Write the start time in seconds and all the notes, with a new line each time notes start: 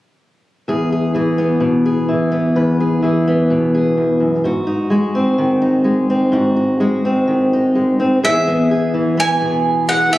0.68 E2 G#4
0.92 G#4
1.15 E3 G#4
1.38 B3
1.60 B2
1.86 G#4
2.09 E3
2.32 B3
2.56 E2 B4
2.80 G#4
3.02 E3 G#4
3.28 B3
3.50 B2
3.75 G#4
3.97 E2
4.20 F#2
4.44 G#2 F#4
4.67 D#4
4.90 G#3 F#4
5.15 C4
5.38 D#3
5.62 D#4
5.84 G#3
6.10 C4
6.32 G#2 F#4
6.56 D#4
6.80 G#3 F#4
7.05 C4
7.28 D#3
7.53 D#4
7.75 G#3
8.00 C4
8.23 E2 G#4 E5
8.48 B3
8.71 G#4
8.94 E3
9.17 B3 G#5
9.41 B2 G#4
9.89 G#4 F#5
10.10 E2 G#4 E5